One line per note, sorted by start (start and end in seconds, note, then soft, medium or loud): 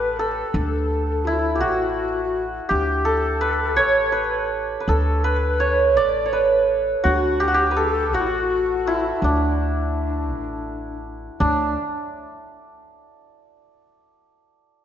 0.00 0.42 A1 medium
0.00 1.55 G4 medium
0.00 0.19 A4 medium
0.00 0.19 B4 medium
0.00 2.19 B4 medium
0.17 1.26 A4 medium
0.17 3.05 A4 medium
0.54 1.62 D2 medium
1.25 1.34 E4 medium
1.25 4.75 E4 medium
1.33 1.40 F#4 medium
1.39 1.63 E4 medium
1.55 1.66 G4 medium
1.60 2.58 A1 medium
1.60 2.75 F#4 medium
1.60 2.24 F#4 medium
2.24 2.41 F#4 medium
2.69 3.78 D2 medium
2.69 5.83 G4 medium
2.69 3.08 G4 medium
3.05 4.88 A4 medium
3.05 3.81 A4 medium
3.41 4.12 B4 medium
3.76 4.75 A1 medium
3.76 5.59 C#5 loud
3.76 4.16 C#5 medium
4.12 4.80 B4 medium
4.12 4.51 B4 medium
4.80 5.24 B4 medium
4.87 5.97 D2 medium
4.87 5.25 A4 medium
4.87 7.76 A4 medium
5.24 5.98 B4 medium
5.24 6.32 B4 medium
5.60 6.03 C#5 medium
5.97 6.93 A1 medium
5.97 6.36 D5 medium
5.97 6.32 D5 loud
6.26 8.81 C#5 medium
6.33 7.71 B4 medium
6.33 6.70 B4 medium
7.04 8.14 D2 medium
7.04 7.46 F#4 loud
7.04 7.14 F#4 medium
7.13 7.21 G4 medium
7.19 7.44 F#4 medium
7.40 7.54 G4 medium
7.48 7.60 F#4 medium
7.54 8.20 G4 medium
7.54 7.80 G4 medium
7.71 10.44 B4 medium
7.77 10.69 A4 medium
7.77 8.15 A4 loud
8.14 9.10 A1 medium
8.14 8.22 F#4 medium
8.14 11.40 F#4 medium
8.20 8.29 E4 medium
8.28 8.88 F#4 medium
8.87 9.15 E4 medium
8.87 12.35 E4 medium
9.15 9.23 E4 medium
9.22 10.31 D2 medium
9.22 11.04 D4 medium
9.22 11.01 D4 medium
10.31 11.28 A1 medium
11.40 11.74 D2 medium
11.40 11.74 D4 medium